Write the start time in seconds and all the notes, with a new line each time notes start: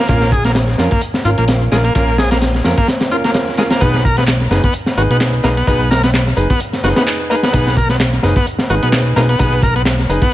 0.09 A#1 A#3 C#4 F4 A#4, kick, closed hi-hat
0.21 snare, closed hi-hat
0.32 G#4, kick, closed hi-hat
0.45 A#3, snare, closed hi-hat
0.55 snare, closed hi-hat
0.68 snare, closed hi-hat
0.78 F2 C#4 F4 A#4, snare, closed hi-hat
0.91 A#3, kick, closed hi-hat
1.01 closed hi-hat
1.14 snare, closed hi-hat
1.25 G#1 C#4 F4 A#4, closed hi-hat
1.38 A#1 A#3, closed hi-hat
1.48 snare, closed hi-hat
1.62 closed hi-hat
1.72 A#1 G#3 C#4 F4 A#4, snare, closed hi-hat
1.84 A#3, closed hi-hat
1.95 A#1 A#3 C#4 F4 A#4, kick, closed hi-hat
2.08 closed hi-hat
2.18 G#4, snare, closed hi-hat
2.31 A#3, snare, closed hi-hat
2.42 snare, closed hi-hat
2.54 snare, closed hi-hat
2.64 F2 C#4 F4 A#4, snare, closed hi-hat
2.78 A#3, kick, closed hi-hat
2.88 snare, closed hi-hat
3.01 snare, closed hi-hat
3.11 C#4 F4 A#4, closed hi-hat
3.24 A#3, snare, closed hi-hat
3.34 snare, closed hi-hat
3.48 snare, closed hi-hat
3.57 G#3 C#4 F4 A#4, snare, closed hi-hat
3.71 A#3, snare, closed hi-hat
3.72 closed hi-hat
3.81 B1 B3 D#4 G#4 B4, kick, closed hi-hat
3.94 snare, closed hi-hat
4.05 A#4, kick, closed hi-hat
4.17 B3, snare, closed hi-hat
4.27 snare, clap, closed hi-hat
4.40 snare, closed hi-hat
4.50 F#1 D#4 G#4 B4, snare, closed hi-hat
4.64 B3, kick, closed hi-hat
4.73 closed hi-hat
4.86 snare, closed hi-hat
4.97 G#1 D#4 F#4 G#4 B4, closed hi-hat
5.10 B1 B3, closed hi-hat
5.20 snare, clap, closed hi-hat
5.34 closed hi-hat
5.43 B1 A#3 D#4 G#4 B4, snare, closed hi-hat
5.57 B3, closed hi-hat
5.67 B1 B3 D#4 G#4 B4, kick, closed hi-hat
5.80 closed hi-hat
5.91 A#4, snare, closed hi-hat
6.04 B3, snare, closed hi-hat
6.14 snare, clap, closed hi-hat
6.27 snare, closed hi-hat
6.37 F#1 D#4 G#4 B4, closed hi-hat
6.50 B3, kick, closed hi-hat
6.60 closed hi-hat
6.73 snare, closed hi-hat
6.83 F#1 D#4 F#4 G#4 B4, snare, closed hi-hat
6.96 B3, snare, closed hi-hat
7.07 clap, closed hi-hat
7.20 closed hi-hat
7.30 A#3 D#4 G#4 B4, closed hi-hat
7.43 B3, snare, closed hi-hat
7.53 B1 B3 D#4 G#4 B4, kick, closed hi-hat
7.67 snare, closed hi-hat
7.77 A#4, kick, closed hi-hat
7.89 B3, snare, closed hi-hat
8.00 snare, clap, closed hi-hat
8.13 snare, closed hi-hat
8.23 F#1 D#4 G#4 B4, snare, closed hi-hat
8.36 B3, kick, closed hi-hat
8.46 closed hi-hat
8.59 snare, closed hi-hat
8.70 G#1 D#4 F#4 G#4 B4, closed hi-hat
8.83 B1 B3, closed hi-hat
8.92 snare, clap, closed hi-hat
9.06 closed hi-hat
9.16 B1 A#3 D#4 G#4 B4, snare, closed hi-hat
9.29 B3, closed hi-hat
9.39 B1 B3 D#4 G#4 B4, kick, closed hi-hat
9.53 closed hi-hat
9.62 A#4, kick, closed hi-hat
9.76 B3, closed hi-hat
9.85 snare, clap, closed hi-hat
9.99 snare, closed hi-hat
10.09 F#1 D#4 G#4 B4, closed hi-hat
10.22 B3, kick, closed hi-hat